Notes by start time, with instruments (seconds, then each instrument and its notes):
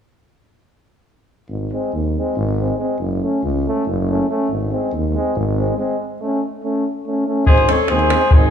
1.49 tuba G#1
1.73 trombone G#3, euphonium C4
1.93 tuba D#2
2.18 trombone G#3, euphonium C4
2.37 tuba G#1
2.58 trombone G#3, euphonium C4
2.78 trombone G#3, euphonium C4
2.99 tuba F#1
3.22 trombone A3, euphonium C#4
3.43 tuba C#2
3.67 trombone A3, euphonium C#4
3.86 tuba F#1
4.08 trombone A3, euphonium C#4
4.29 trombone A3, euphonium C#4
4.49 tuba G#1
4.72 trombone G#3, euphonium C4
4.92 tuba D#2
5.14 trombone G#3, euphonium C4
5.36 tuba G#1
5.57 trombone G#3, euphonium C4
5.78 trombone G#3, euphonium C4
6.21 trombone A3, euphonium C#4
6.64 trombone A3, euphonium C#4
7.06 trombone A3, euphonium C#4
7.27 trombone A3, euphonium C#4
7.46 tuba G#1, trombone G#3, euphonium C4, alto saxophone G#4, flugelhorn C5, davul low
7.58 davul high
7.69 trombone G#3, euphonium C4, alto saxophone A4, flugelhorn C#5, davul high
7.88 tuba D#2, trombone G#3, euphonium C4, alto saxophone G#4, flugelhorn C5, davul high
7.99 davul high
8.10 trombone G#3, euphonium C4, davul high
8.21 davul high
8.31 tuba G#1, trombone G#3, alto saxophone D#4, flugelhorn G#4, davul low
8.35 euphonium C4